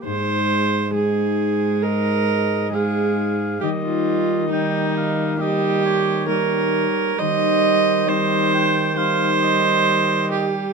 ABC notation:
X:1
M:4/4
L:1/16
Q:1/4=67
K:Ab
V:1 name="Oboe"
z8 e4 f4 | e4 g2 f2 e2 d6 | c4 e2 g2 f2 e4 z2 |]
V:2 name="Viola"
c4 A4 B4 A4 | G F3 E4 G4 B4 | e4 c4 c6 G2 |]
V:3 name="Harp"
[A,EA]4 [A,EA]8 [A,EA]4 | [B,EG]4 [B,EG]4 [B,EG]4 [B,EG]4 | [CEG]4 [CEG]4 [CEG]8 |]
V:4 name="Harp" clef=bass
A,,16 | E,16 | E,16 |]
V:5 name="Viola" clef=bass
A,4 A,8 A,4 | G,4 G,4 G,4 G,4 | G,4 G,4 G,8 |]
V:6 name="Trombone" clef=bass
A,,16 | E,12- E,2 z2 | E,16 |]